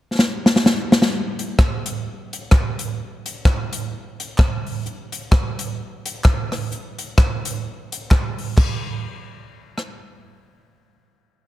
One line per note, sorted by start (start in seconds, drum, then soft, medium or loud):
0.19 snare medium
0.46 snare medium
0.56 snare medium
0.66 snare medium
0.92 snare loud
1.02 snare medium
1.39 closed hi-hat medium
1.59 kick loud
1.59 cross-stick loud
1.59 clap medium
1.86 closed hi-hat loud
2.33 closed hi-hat medium
2.51 kick loud
2.51 cross-stick loud
2.51 clap loud
2.79 closed hi-hat medium
3.26 closed hi-hat medium
3.45 kick loud
3.45 cross-stick loud
3.45 clap medium
3.73 closed hi-hat loud
4.20 closed hi-hat medium
4.38 kick loud
4.38 cross-stick loud
4.38 clap loud
4.66 open hi-hat medium
4.86 hi-hat pedal medium
5.12 closed hi-hat medium
5.32 kick loud
5.32 cross-stick loud
5.32 clap medium
5.59 closed hi-hat loud
6.06 closed hi-hat medium
6.24 kick loud
6.24 cross-stick loud
6.24 clap loud
6.52 cross-stick medium
6.52 open hi-hat medium
6.71 hi-hat pedal medium
6.99 closed hi-hat medium
7.18 kick loud
7.18 cross-stick loud
7.18 clap medium
7.45 closed hi-hat loud
7.92 closed hi-hat medium
8.11 kick loud
8.11 cross-stick loud
8.11 clap loud
8.38 open hi-hat medium
8.57 kick loud
8.57 clap medium
8.57 crash medium
9.78 cross-stick medium